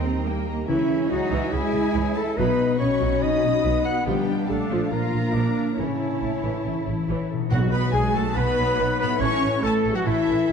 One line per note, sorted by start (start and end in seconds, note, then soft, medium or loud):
0.00 0.69 D#2 medium
0.00 0.46 D#3 medium
0.00 0.70 D#3 medium
0.00 0.70 G3 soft
0.00 0.26 C4 medium
0.00 0.46 D#4 medium
0.00 0.24 G4 medium
0.00 0.46 A#4 medium
0.00 0.46 D#5 medium
0.04 0.26 A#3 medium
0.04 0.70 D#4 soft
0.04 0.26 G4 medium
0.04 0.27 D#5 soft
0.04 0.27 A#5 medium
0.25 0.47 G3 medium
0.25 0.69 A#3 medium
0.25 0.70 G4 medium
0.25 0.47 A#4 medium
0.25 0.49 G5 medium
0.46 0.68 A#3 medium
0.46 0.69 G4 medium
0.46 0.71 A#4 medium
0.46 0.70 D#5 medium
0.46 0.70 A#5 medium
0.67 0.76 C#2 medium
0.67 2.39 C#3 medium
0.67 1.07 E3 medium
0.67 0.88 E3 medium
0.67 1.10 C#4 medium
0.67 1.08 E4 medium
0.67 1.08 E5 medium
0.67 2.34 E5 medium
0.67 2.34 G#5 medium
0.89 1.73 G#3 medium
1.10 1.18 C#2 medium
1.10 1.53 F#3 medium
1.10 1.18 G#3 medium
1.10 1.54 D#4 medium
1.10 1.54 F#4 medium
1.10 1.94 C#5 medium
1.10 1.54 F#5 medium
1.32 1.40 C#2 medium
1.32 1.52 E3 medium
1.32 2.16 E4 medium
1.53 1.61 C#2 medium
1.53 2.15 G#3 medium
1.53 2.39 C#4 soft
1.53 1.61 C#4 medium
1.53 2.36 E4 medium
1.53 2.19 G#4 medium
1.53 2.17 G#5 medium
1.74 1.82 C#2 medium
1.74 1.82 G#3 medium
1.74 2.39 G#3 medium
1.94 2.04 C#2 medium
1.94 2.15 E3 medium
1.94 2.39 C#5 medium
2.16 2.25 A3 medium
2.16 2.39 E4 medium
2.16 2.39 A4 medium
2.16 2.38 A5 medium
2.37 2.46 B1 medium
2.37 4.08 B2 medium
2.37 2.58 F#3 medium
2.37 2.79 B3 medium
2.37 2.79 D#4 medium
2.37 4.07 F#4 medium
2.37 2.79 B4 loud
2.37 4.08 D#5 medium
2.37 2.80 B5 medium
2.37 4.04 B5 medium
2.58 3.42 B3 medium
2.79 2.89 B1 soft
2.79 2.88 B3 soft
2.79 3.21 C#4 medium
2.79 3.63 C#4 medium
2.79 3.24 C#5 medium
2.79 3.63 D#5 medium
2.79 3.21 C#6 medium
3.00 3.11 B1 medium
3.00 3.20 F#3 medium
3.00 3.84 D#4 medium
3.22 3.31 B1 medium
3.22 4.09 F#3 medium
3.22 3.84 D#4 medium
3.22 3.31 D#4 medium
3.22 3.85 D#5 medium
3.22 3.84 D#6 medium
3.43 3.52 B1 soft
3.43 3.51 B3 medium
3.43 4.09 B3 medium
3.64 3.73 B1 medium
3.64 3.84 F#3 medium
3.64 4.49 B3 medium
3.85 4.08 D#4 medium
3.85 3.96 F#4 medium
3.85 4.06 F#5 medium
3.85 4.07 F#6 medium
4.06 4.15 A#1 medium
4.06 5.80 D3 medium
4.06 4.27 F3 medium
4.06 4.48 G3 medium
4.06 4.91 D4 medium
4.06 4.51 G4 medium
4.06 5.75 F5 medium
4.06 4.49 G5 medium
4.27 5.12 D4 medium
4.48 4.57 A#1 soft
4.48 4.91 A3 medium
4.48 4.57 A#3 soft
4.48 4.91 D4 medium
4.48 4.92 A4 medium
4.48 5.33 D5 soft
4.48 4.92 A5 medium
4.69 4.77 A#1 medium
4.69 4.90 F3 medium
4.69 5.55 F4 soft
4.90 4.99 A#1 medium
4.90 5.80 F3 soft
4.90 5.78 A#3 medium
4.90 5.00 D4 soft
4.90 5.34 F4 medium
4.90 5.77 A#4 medium
4.90 5.76 A#5 medium
5.13 5.22 A#1 soft
5.13 5.22 A#3 soft
5.13 5.80 D4 soft
5.34 5.42 A#1 medium
5.34 5.55 F3 medium
5.34 5.78 D4 medium
5.34 5.80 D5 medium
5.57 5.80 F4 soft
5.77 5.87 A1 medium
5.77 7.54 A2 soft
5.77 7.07 C#3 medium
5.77 5.99 E3 medium
5.77 7.06 C#4 medium
5.77 7.27 E4 medium
5.77 7.29 E4 medium
5.77 7.08 C#5 medium
5.77 7.29 C#5 medium
5.77 7.32 A5 medium
6.00 6.86 E4 soft
6.22 6.30 A1 soft
6.22 6.30 A3 soft
6.22 7.07 C#5 soft
6.43 6.51 A1 medium
6.43 6.63 E3 medium
6.43 7.29 A4 soft
6.64 6.72 A1 soft
6.64 7.54 E3 soft
6.64 6.73 C#4 soft
6.87 6.95 A1 soft
6.87 6.96 A3 soft
6.87 7.54 E4 soft
7.08 7.16 A1 medium
7.08 7.29 E3 medium
7.08 7.54 C#5 soft
7.30 9.14 B2 medium
7.30 7.54 A4 soft
7.37 9.16 D#4 medium
7.42 9.18 F#4 medium
7.46 9.20 D#5 medium
7.50 7.59 B1 medium
7.50 8.12 B2 loud
7.50 8.32 F#3 medium
7.50 7.59 F#3 medium
7.50 7.71 B3 medium
7.50 8.32 D#4 medium
7.50 7.71 F#4 medium
7.50 7.72 F#4 medium
7.50 7.61 F#4 medium
7.50 7.72 F#4 medium
7.50 9.18 F#4 medium
7.50 7.57 F#5 medium
7.50 7.60 F#5 medium
7.71 7.80 B1 medium
7.71 7.94 B3 medium
7.71 7.81 B3 medium
7.71 7.93 B4 medium
7.71 7.82 B4 medium
7.71 7.83 B4 medium
7.71 7.93 B5 loud
7.71 7.80 B5 medium
7.93 8.02 B1 medium
7.93 8.15 G#3 medium
7.93 8.01 D#4 medium
7.93 8.15 G#4 medium
7.93 8.04 G#4 medium
7.93 8.15 G#5 loud
8.14 8.23 B1 medium
8.14 8.36 A3 medium
8.14 8.22 B3 medium
8.14 8.37 A4 medium
8.14 8.23 A4 medium
8.14 8.25 A4 medium
8.14 8.36 A4 medium
8.14 8.37 A5 medium
8.14 8.38 A5 medium
8.35 8.45 B1 medium
8.35 9.19 F#3 medium
8.35 8.56 B3 medium
8.35 8.99 B3 loud
8.35 9.20 D#4 medium
8.35 9.00 B4 loud
8.35 8.98 B4 medium
8.35 8.99 B4 loud
8.35 9.00 B5 loud
8.35 9.00 B5 medium
8.58 8.67 B1 medium
8.58 8.66 B3 medium
8.79 8.87 B1 medium
8.79 8.87 D#4 medium
8.99 10.52 A2 medium
8.99 9.21 B3 medium
8.99 9.07 B4 medium
8.99 9.09 B4 medium
8.99 9.23 B4 medium
8.99 9.10 B4 medium
8.99 9.22 B5 medium
8.99 9.22 B5 loud
9.07 10.52 E4 medium
9.11 10.52 A4 medium
9.16 10.52 C#5 medium
9.16 9.62 C#5 loud
9.20 9.29 A1 medium
9.20 9.60 E3 medium
9.20 9.42 A3 medium
9.20 9.62 C#4 loud
9.20 9.61 E4 medium
9.20 10.52 A4 medium
9.20 9.64 C#5 loud
9.20 9.62 C#5 medium
9.20 9.62 C#5 loud
9.20 9.63 C#6 loud
9.20 9.63 C#6 medium
9.43 9.51 A1 medium
9.43 9.51 C#4 medium
9.62 9.72 A1 medium
9.62 10.03 E3 medium
9.62 9.94 A3 medium
9.62 10.04 E4 medium
9.62 9.73 E4 medium
9.62 9.94 A4 medium
9.62 9.97 A4 medium
9.62 9.93 A4 medium
9.62 9.95 A4 medium
9.62 9.71 A5 medium
9.62 9.72 A5 loud
9.84 9.93 A1 medium
9.84 9.92 C#4 medium
9.94 10.05 F#3 medium
9.94 10.08 F#4 medium
9.94 10.06 F#4 medium
9.94 10.08 F#4 medium
9.94 10.00 F#5 medium
9.94 10.08 F#5 medium
10.05 10.15 A1 medium
10.05 10.52 E3 medium
10.05 10.25 A3 medium
10.05 10.52 E4 medium
10.05 10.52 E5 loud
10.05 10.52 E5 medium
10.28 10.36 A1 medium
10.28 10.36 C#4 medium
10.49 10.52 A1 medium
10.49 10.52 E4 medium